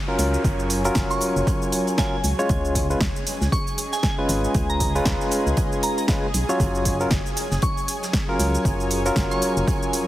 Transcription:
Already playing: ambient pad F#3 C#5 G#5, analog synth pad G#4 G#5, downlifter
0.08 tine electric piano F#3 C#4 F4 A#4
0.18 fm bass C#2, snare, closed hi-hat, open hi-hat, shaker
0.34 shaker
0.44 fm bass F#1, kick, closed hi-hat, shaker
0.60 shaker
0.70 closed hi-hat, open hi-hat, shaker
0.84 tine electric piano F#3 C#4 F4 A#4, closed hi-hat, shaker
0.95 fm bass F#1, kick, snare, closed hi-hat, shaker
1.11 synth bell C#6, snare, shaker
1.21 closed hi-hat, open hi-hat, shaker
1.36 fm bass F#1, shaker
1.47 kick, closed hi-hat, shaker
1.62 shaker
1.72 closed hi-hat, open hi-hat, shaker
1.87 closed hi-hat, shaker
1.98 tine electric piano F#3 C#4 F4 A#4, synth bell G#5, kick, snare, closed hi-hat, shaker
2.24 fm bass C#2, ambient pad C#4, closed hi-hat, open hi-hat, shaker
2.39 tine electric piano G#3 C#4 F4 C#5, ambient pad G#4 D#5, shaker
2.49 fm bass C#2, kick, closed hi-hat, shaker
2.65 shaker
2.75 kick, closed hi-hat, open hi-hat, shaker
2.90 tine electric piano G#3 C#4 F4 B4, shaker
3.01 fm bass C#2, kick, snare, closed hi-hat, shaker
3.16 shaker
3.27 snare, closed hi-hat, open hi-hat, shaker
3.41 fm bass C#2, snare, shaker
3.52 synth bell C#6, kick, closed hi-hat, shaker
3.67 closed hi-hat, shaker
3.78 closed hi-hat, open hi-hat, shaker
3.92 synth bell G#5, snare, shaker
4.03 synth bell G#5, kick, snare, closed hi-hat, shaker
4.18 tine electric piano G#3 C#4 F4 B4
4.29 fm bass G#1, snare, closed hi-hat, open hi-hat, shaker
4.44 shaker
4.54 fm bass C#2, kick, closed hi-hat, shaker
4.70 synth bell A#5, shaker
4.80 kick, closed hi-hat, open hi-hat, shaker
4.95 tine electric piano G#3 C#4 F4 B4, closed hi-hat, shaker
5.05 fm bass C#2, kick, snare, closed hi-hat, shaker
5.21 snare, shaker
5.31 closed hi-hat, open hi-hat, shaker
5.46 fm bass C#2, shaker
5.57 kick, closed hi-hat, shaker
5.72 shaker
5.83 synth bell A#5, closed hi-hat, open hi-hat, shaker
5.98 synth bell A#5, closed hi-hat, shaker
6.08 tine electric piano G#3 C#4 F4 B4, kick, snare, closed hi-hat, shaker
6.34 fm bass B1, closed hi-hat, open hi-hat, shaker
6.49 tine electric piano F#3 C#4 F4 C#5, shaker
6.60 fm bass F#1, ambient pad F#3, kick, closed hi-hat, shaker
6.74 ambient pad C#5, shaker
6.85 kick, closed hi-hat, open hi-hat, shaker
7.00 tine electric piano F#3 C#4 F4 A#4, shaker
7.11 fm bass F#1, kick, snare, closed hi-hat, shaker
7.19 ambient pad G#5
7.26 shaker
7.36 snare, closed hi-hat, open hi-hat, shaker
7.51 fm bass F#1, snare, shaker
7.62 synth bell C#6, kick, closed hi-hat, shaker
7.77 closed hi-hat, shaker
7.88 closed hi-hat, open hi-hat, shaker
8.03 snare, shaker
8.13 kick, snare, closed hi-hat, shaker
8.28 tine electric piano F#3 C#4 F4 A#4
8.39 fm bass C#2, snare, closed hi-hat, open hi-hat, shaker
8.55 shaker
8.65 fm bass F#1, kick, closed hi-hat, shaker
8.80 shaker
8.91 closed hi-hat, open hi-hat, shaker
9.05 tine electric piano F#3 C#4 F4 A#4, closed hi-hat, shaker
9.16 fm bass F#1, kick, snare, closed hi-hat, shaker
9.31 synth bell C#6, snare, shaker
9.42 closed hi-hat, open hi-hat, shaker
9.57 fm bass F#1, shaker
9.68 kick, closed hi-hat, shaker
9.83 shaker
9.93 closed hi-hat, open hi-hat, shaker

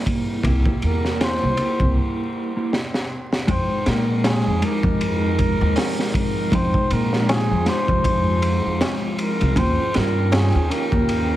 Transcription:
Already playing: ambient pad C3 G3 A#3 E4, clean electric guitar A#3 E4 G4
0.06 kick, ride
0.44 upright bass C2, clean electric guitar A#3 E4 G4, kick, ride
0.66 kick
0.82 upright bass E2, ride
0.87 muted trumpet A#4
1.05 snare
1.21 muted trumpet C5, snare, ride, tabla na
1.43 upright bass C2
1.57 clean electric guitar A#3 E4 G4, ride
1.80 upright bass C2, kick
2.57 clean electric guitar A#3 E4 G4
2.73 snare
2.94 snare
3.33 snare
3.47 upright bass F2, ambient pad F3 G#3 C4 D#4, clean electric guitar G#3 D#4 G5, muted trumpet C5, kick, ride
3.86 upright bass A#2, muted trumpet A#4, snare, ride
4.24 muted trumpet G#4, snare, ride, tabla na
4.47 upright bass F2
4.62 clean electric guitar G#3 D#4 G4, muted trumpet A#4, ride
4.83 upright bass F2, kick
5.01 ride
5.39 kick, ride
5.61 upright bass D#2
5.76 snare, open hi-hat, tabla na
5.99 snare
6.14 muted trumpet A#4, kick, ride
6.52 upright bass F2, clean electric guitar G#3 D#4 G5, ambient pad F4, muted trumpet C5, kick, ride
6.74 kick
6.90 upright bass A#2, muted trumpet A#4, ride
7.13 snare
7.29 muted trumpet G#4, snare, ride, tabla na
7.51 upright bass F2
7.66 clean electric guitar G#3 D#4 G4, muted trumpet C5, snare, ride
7.88 upright bass F2, kick
8.04 kick, ride
8.42 ride
8.65 upright bass F2
8.81 snare, ride, tabla na
9.19 muted trumpet A#4, ride
9.41 upright bass C2, ride
9.56 upright bass D#2, ambient pad D#3 A#3 C#4 G5, clean electric guitar C#4 F4 G5, muted trumpet C5, kick, ride
9.94 upright bass G2, muted trumpet A#4, snare, ride
10.32 muted trumpet G#4, snare, ride, tabla na
10.55 upright bass D#2
10.70 clean electric guitar C#4 F4 G4, muted trumpet A#4, ride
10.92 upright bass D#2, kick
11.09 ride

